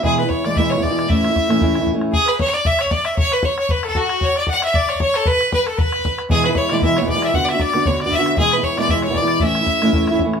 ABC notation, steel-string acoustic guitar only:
X:1
M:4/4
L:1/16
Q:"Swing" 1/4=231
K:Emix
V:1 name="Steel-string acoustic guitar" clef=bass
[E,,B,,E,G,B,E]3 [E,G,B,E]3 [E,,B,,E,G,B,E]2 [E,,B,,E,G,B,E]3 [E,,B,,E,G,B,E]2 [E,,B,,E,G,B,E]3 | [A,,E,A,CE]3 [A,CE]3 [A,,E,A,CE]2 [A,,E,A,CE]3 [A,,E,A,CE]2 [A,,E,A,CE]3 | z16 | z16 |
z16 | z16 | [E,,B,,E,G,B,E]3 [E,G,B,E]3 [E,,B,,E,G,B,E]2 [E,,B,,E,G,B,E]3 [E,,B,,E,G,B,E]2 [E,,B,,E,G,B,E]3 | [D,B,DF]3 [B,DF]3 [D,B,DF]2 [D,B,DF]3 [D,B,DF]2 [D,B,DF]3 |
[E,,B,,E,G,B,E]3 [E,G,B,E]3 [E,,B,,E,G,B,E]2 [E,,B,,E,G,B,E]3 [E,,B,,E,G,B,E]2 [E,,B,,E,G,B,E]3 | [A,,E,A,CE]3 [A,CE]3 [A,,E,A,CE]2 [A,,E,A,CE]3 [A,,E,A,CE]2 [A,,E,A,CE]3 |]